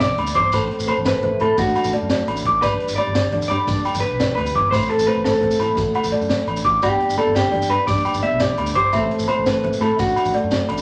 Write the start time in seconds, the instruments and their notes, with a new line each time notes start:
Already playing: fingered electric bass B1, nylon-string guitar G2 B3 D4 G4
0.00 clean electric guitar D5, celesta D5, snare, closed hi-hat, shekere
0.10 low conga
0.18 fingered electric bass D2, closed hi-hat, high conga, low agogo
0.27 shekere
0.35 fingered electric bass G1, nylon-string guitar G2, clean electric guitar C5, celesta D6, kick, closed hi-hat, low conga
0.52 fingered electric bass A1, nylon-string guitar A2 A4, celesta C5, kick, closed hi-hat, high conga, low agogo, shekere
0.62 low conga
0.71 nylon-string guitar C4, closed hi-hat
0.79 fingered electric bass A1, shekere
0.88 nylon-string guitar A3, clean electric guitar C5, celesta C5, closed hi-hat, high conga, low conga, low agogo
0.97 fingered electric bass A1, low conga
1.05 nylon-string guitar E4, clean electric guitar B4, celesta C5, snare, closed hi-hat, shekere
1.23 fingered electric bass A1, nylon-string guitar E3 C4, celesta C5, closed hi-hat, high conga, low conga
1.40 fingered electric bass A2, nylon-string guitar E4, clean electric guitar A4, celesta B5, closed hi-hat, low agogo
1.57 fingered electric bass A1, nylon-string guitar A2 A3 D4, clean electric guitar F#4, kick, closed hi-hat, high conga, low conga, shekere
1.67 shekere
1.75 nylon-string guitar D4, celesta F#5, closed hi-hat, low agogo, shekere
1.84 fingered electric bass A1, low conga, shekere
1.93 nylon-string guitar A3, celesta D5, closed hi-hat, high conga
2.02 fingered electric bass F#2
2.10 nylon-string guitar F#4, celesta D5, snare, closed hi-hat, low conga, shekere
2.28 fingered electric bass A1, nylon-string guitar A2 D4, closed hi-hat, high conga, low agogo
2.37 shekere
2.45 fingered electric bass A1, nylon-string guitar F#4, celesta D6, kick, closed hi-hat, low conga
2.62 fingered electric bass G1, nylon-string guitar G2 G4, clean electric guitar B4, celesta D5, kick, closed hi-hat, high conga, low agogo, shekere
2.71 low conga
2.80 nylon-string guitar D4, closed hi-hat
2.88 fingered electric bass G1, shekere
2.96 nylon-string guitar G3, clean electric guitar D5, celesta D5, closed hi-hat, high conga, low conga, low agogo
3.07 fingered electric bass G1, low conga
3.15 nylon-string guitar G4, celesta D5, snare, closed hi-hat, shekere
3.32 fingered electric bass G1, nylon-string guitar D3 D4, celesta D5, closed hi-hat, high conga, low conga
3.42 shekere
3.48 fingered electric bass G2, nylon-string guitar G4, clean electric guitar D5, celesta B5, snare, closed hi-hat, low agogo
3.67 nylon-string guitar G2 B4, fingered electric bass G2, kick, closed hi-hat, high conga, low conga, shekere
3.77 shekere
3.85 nylon-string guitar D4, celesta G5, closed hi-hat, low agogo, shekere
3.94 fingered electric bass G1, low conga, shekere
4.00 nylon-string guitar G3, clean electric guitar B4, closed hi-hat, high conga
4.11 fingered electric bass B1, low conga
4.20 celesta D5, snare, closed hi-hat, shekere
4.29 low conga
4.35 fingered electric bass D2, clean electric guitar B4, closed hi-hat, high conga, low agogo
4.46 shekere
4.54 fingered electric bass G1, nylon-string guitar G2, celesta D6, kick, closed hi-hat, low conga
4.71 fingered electric bass A1, nylon-string guitar A2 A3 C4 E4 B4, clean electric guitar C5, celesta C5, kick, closed hi-hat, high conga, low conga, low agogo, shekere
4.81 low conga, shekere
4.89 nylon-string guitar C4, clean electric guitar A4, closed hi-hat
4.98 fingered electric bass A1, shekere
5.07 nylon-string guitar A3, clean electric guitar B4, celesta C5, closed hi-hat, high conga, low agogo
5.15 fingered electric bass A1, low conga
5.24 clean electric guitar A4, celesta C5, snare, closed hi-hat, shekere
5.34 shekere
5.41 fingered electric bass A1, nylon-string guitar E3 C4, celesta C5, kick, closed hi-hat, high conga, low conga
5.50 low conga, shekere
5.60 fingered electric bass A2, nylon-string guitar E4, celesta B5, closed hi-hat, low agogo, shekere
5.75 fingered electric bass A1, nylon-string guitar A2 F#4, kick, closed hi-hat, high conga, low conga, shekere
5.95 celesta F#5, muted nylon-string guitar stroke, closed hi-hat, low agogo
6.04 fingered electric bass A1, low conga, shekere
6.12 nylon-string guitar A3, celesta D5, closed hi-hat, high conga
6.21 fingered electric bass F#2, shekere
6.29 nylon-string guitar F#4, celesta D5, snare, closed hi-hat, high conga, shekere
6.47 fingered electric bass A1, nylon-string guitar A2 D4, closed hi-hat, low conga, low agogo
6.57 shekere
6.65 fingered electric bass A1, nylon-string guitar F#4, celesta D6, kick, closed hi-hat, low conga, shekere
6.82 fingered electric bass G1, nylon-string guitar G2 B3 D4, clean electric guitar G4, celesta D5, kick, closed hi-hat, high conga, low agogo, shekere
6.92 low conga
7.00 closed hi-hat
7.09 fingered electric bass G1, shekere
7.18 nylon-string guitar B3, clean electric guitar A4, celesta D5, closed hi-hat, high conga, low conga, low agogo
7.26 fingered electric bass G1, low conga
7.35 nylon-string guitar D4, clean electric guitar G4, celesta D5, snare, closed hi-hat, shekere
7.52 fingered electric bass G1, nylon-string guitar G2 D4, celesta D5, closed hi-hat, high conga, low conga
7.62 shekere
7.69 fingered electric bass G2, clean electric guitar B4, celesta B5, closed hi-hat, low agogo
7.87 nylon-string guitar G2 G4, fingered electric bass G2, clean electric guitar D5, kick, closed hi-hat, high conga, low conga, shekere
7.97 shekere
8.05 nylon-string guitar D4, celesta G5, closed hi-hat, low agogo, shekere
8.14 fingered electric bass G1, low conga, shekere
8.23 nylon-string guitar B3, celesta D5, clean electric guitar E5, closed hi-hat, high conga
8.32 fingered electric bass B1, low conga
8.40 nylon-string guitar G4, celesta D5, clean electric guitar D5, snare, closed hi-hat, low conga, shekere
8.50 low conga
8.57 fingered electric bass D2, nylon-string guitar G2 D4, closed hi-hat, high conga, low agogo
8.66 shekere
8.75 fingered electric bass G1, nylon-string guitar G4, clean electric guitar C5, celesta D6, kick, closed hi-hat, low conga
8.93 fingered electric bass A1, nylon-string guitar A2 A3 C4 E4 A4, celesta E5, kick, closed hi-hat, high conga, low agogo, shekere
9.03 low conga
9.11 nylon-string guitar C4, closed hi-hat
9.19 fingered electric bass A1, shekere
9.28 nylon-string guitar A3, clean electric guitar C5, celesta C5, closed hi-hat, high conga, low conga, low agogo
9.37 fingered electric bass A1, low conga
9.45 clean electric guitar B4, celesta C5, muted nylon-string guitar stroke, snare, closed hi-hat, shekere
9.64 fingered electric bass A1, nylon-string guitar E3 C4, celesta C5, closed hi-hat, high conga, low conga
9.73 shekere
9.81 fingered electric bass A2, nylon-string guitar E4, clean electric guitar A4, celesta B5, snare, closed hi-hat, low agogo
9.99 fingered electric bass A1, nylon-string guitar A2 D4, clean electric guitar F#4, kick, closed hi-hat, high conga, low conga, shekere
10.09 shekere
10.16 nylon-string guitar D4, closed hi-hat, low agogo, shekere
10.25 fingered electric bass A1, low conga, shekere
10.34 nylon-string guitar A3, celesta D5, closed hi-hat, high conga
10.43 fingered electric bass F#2, low conga
10.51 nylon-string guitar F#4, celesta D5, snare, closed hi-hat, low conga, shekere
10.69 fingered electric bass A1, nylon-string guitar A2 D4, closed hi-hat, high conga, low agogo
10.78 shekere